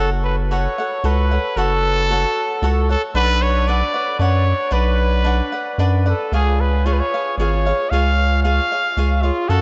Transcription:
Already playing: F#4 A4 C#5
0.00 F#1 A4 F#5
0.24 B4
0.51 F#4 A4 C#5 F#5
0.78 A4 C#5 F#5
1.04 C#2 F#4 A4 B4 C#5 F#5
1.31 A4 C#5 F#5
1.56 F#1 F#4 A4 C#5 F#5
2.10 F#4 A4 C#5 F#5
2.62 C#2 F#4 A4 C#5 F#5
2.89 A4 C#5 F#5
3.14 B1 D4 B4 D5 F#5
3.42 C#5
3.68 D4 B4 D5 F#5
3.94 B4 D5 F#5
4.19 F#2 D4 B4 C#5 F#5
4.71 B1 D4 B4 D5 F#5
5.24 D4 B4 D5 F#5
5.52 B4 D5 F#5
5.78 F#2 D4 B4 D5 F#5
6.06 A4 B4 D5 F#5
6.32 C#2 F4 G#4 C#5 F5
6.61 B4
6.86 F4 G#4 C#5 F5
6.93 B4
7.00 C#5
7.14 G#4 C#5 F5
7.38 G#1 F4 G#4 C#5 F5
7.66 G#4 C#5 F5
7.90 C#2 F4 G#4 C#5 F5
8.43 F4 G#4 C#5 F5
8.72 G#4 C#5 F5
8.97 C#2 F4 G#4 C#5 F5
9.22 F4 G#4 C#5 F5
9.49 F#2 F#4 A4 C#5 F#5

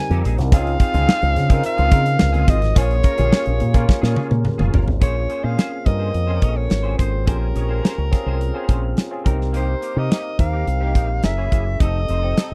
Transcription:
Already playing: G3 C4 D#4 A#4 G#5
0.10 F2 C4 D#4 G4, closed hi-hat, high conga
0.24 A#1 C4 D#4 G#4, closed hi-hat, muted conga, low conga
0.38 C2, muted clean electric guitar stroke, snare, closed hi-hat, low conga
0.52 C#2 C4 D#4 F4 G#4 F5, kick, closed hi-hat, muted conga
0.67 closed hi-hat
0.80 C4 F4 G#4, kick, closed hi-hat, muted conga
0.93 C#2 C4 D#4 F4 G#4, closed hi-hat, high conga
1.07 C4 F4 G#4, snare
1.21 C#2, muted clean electric guitar stroke, closed hi-hat
1.35 C#3, muted clean electric guitar stroke, snare, closed hi-hat, muted conga, high conga, low conga
1.49 C4 D#4 F4 G#4 A#4, kick, closed hi-hat
1.63 F5, muted clean electric guitar stroke, closed hi-hat, muted conga
1.77 C#2 C4 F4 G#4, closed hi-hat
1.91 C#3 C4 F4 A#4, kick, closed hi-hat
2.05 muted clean electric guitar stroke, closed hi-hat
2.19 C#2, muted clean electric guitar stroke, snare, muted conga, high conga
2.32 C4 F4 G#4, closed hi-hat, high conga
2.47 G#1 C4 F4 G#4 D#5, kick, closed hi-hat, low conga
2.61 muted clean electric guitar stroke, snare, closed hi-hat, low conga
2.75 A#1 A#3 C#4 F4 G#4 C#5, kick, closed hi-hat, muted conga
2.91 closed hi-hat
3.03 C#4 F4 A#4, kick, closed hi-hat
3.17 A#1 A#3 C#4 F4 G4 G#4, closed hi-hat, high conga
3.25 G#4
3.31 C#4 F4 G#4, snare
3.45 A#1, muted clean electric guitar stroke, closed hi-hat
3.60 A#2, muted clean electric guitar stroke, closed hi-hat, muted conga, low conga
3.73 A#3 C#4 F4 G#4 A#4, kick, closed hi-hat
3.88 muted clean electric guitar stroke, kick, snare, muted conga
4.01 A#2 C#4 F4 G#4, snare
4.15 C#4 F4 G#4, high tom
4.30 A#2, muted clean electric guitar stroke, high tom
4.44 muted clean electric guitar stroke, mid tom, muted conga, high conga
4.58 F1 C#4 F4 G#4, mid tom, high conga
4.72 G1 C#4 F4 A#4, floor tom, muted conga, low conga
4.87 G#1, muted clean electric guitar stroke, floor tom, low conga
5.00 A#1 A#3 C#4 F4 G#4 C5 C#5, kick, closed hi-hat
5.29 C#4 G#4 C5, closed hi-hat
5.43 A#2 C4 C#4 F4 G#4 C5 F5
5.57 C#4 G#4 C5, snare, closed hi-hat
5.71 muted clean electric guitar stroke
5.85 G2 C4 C#4 F4 A#4 D#5, muted clean electric guitar stroke, kick, closed hi-hat
5.99 C#4 G#4 C5
6.14 F2, closed hi-hat
6.27 C4 C#4 F4 G#4 A4 C5
6.36 A#4
6.41 A#1 C#4 G#4 C#5, kick, closed hi-hat
6.56 C#5, muted clean electric guitar stroke
6.69 G#1, muted clean electric guitar stroke, snare, closed hi-hat
6.82 C4 C#4 F4 G#4 C5
6.97 G#1 C#4 G#4 C5, kick, closed hi-hat
7.11 muted clean electric guitar stroke
7.26 A#1 C4 C#4 F4 G4 G#4 A#4 C5, kick, closed hi-hat
7.55 A#1 C#4 G#4 C#5, closed hi-hat
7.69 C4 C#4 F4 G#4 A#4 C5
7.83 C#4 G#4 C5, snare, closed hi-hat
7.98 C#2, muted clean electric guitar stroke
8.11 C4 C#4 F4 G#4, muted clean electric guitar stroke, kick, snare, closed hi-hat
8.26 C2 C#4 G#4 C5
8.40 muted clean electric guitar stroke, closed hi-hat
8.54 C4 C#4 F4 G#4 C5
8.69 A#1 C#4 G#4 C5, kick, closed hi-hat
8.83 muted clean electric guitar stroke
8.97 snare, closed hi-hat
9.10 C4 C#4 F4 G#4, muted clean electric guitar stroke
9.24 C2 A#3 C4 C#4 D#4 G4 A#4, kick, closed hi-hat
9.31 D#4
9.39 muted clean electric guitar stroke, snare
9.52 A#3 D#4 G4 C5, closed hi-hat
9.81 A#3 D#4 G4, closed hi-hat
9.95 C3 A#3 C4 D#4 G4 A#4 D#5
10.09 A#3 D#4 G4, snare, closed hi-hat
10.24 muted clean electric guitar stroke
10.38 D#2 C4 D#4 G4 A#4 F5, muted clean electric guitar stroke, kick, closed hi-hat
10.52 A#3 D#4 G4
10.66 C2, muted clean electric guitar stroke, closed hi-hat
10.80 A#3 C4 D#4 G4 C5
10.94 A#1 A#3 D#4 A#4, kick, closed hi-hat
11.09 muted clean electric guitar stroke
11.23 F#1 C#4 E4 G#4 A#4 E5, muted clean electric guitar stroke, snare, closed hi-hat
11.37 A#3 C#4 E4 G#4 C#5
11.51 F#1 A#3 E4 G#4, kick, closed hi-hat
11.65 muted clean electric guitar stroke
11.79 F1 C4 D#4 G4 A4 D#5, kick, closed hi-hat
12.08 F1 C4 D#4 C5, closed hi-hat
12.22 C4 D#4 G4 A4 C5
12.36 C4 D#4 A4, snare, closed hi-hat
12.51 muted clean electric guitar stroke

